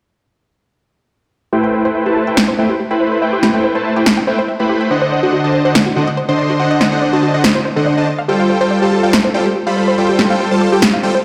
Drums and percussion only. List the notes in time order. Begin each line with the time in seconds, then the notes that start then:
2.37 snare
3.43 snare
4.06 snare
5.75 snare
6.81 snare
7.44 snare
9.13 snare
10.19 snare
10.82 snare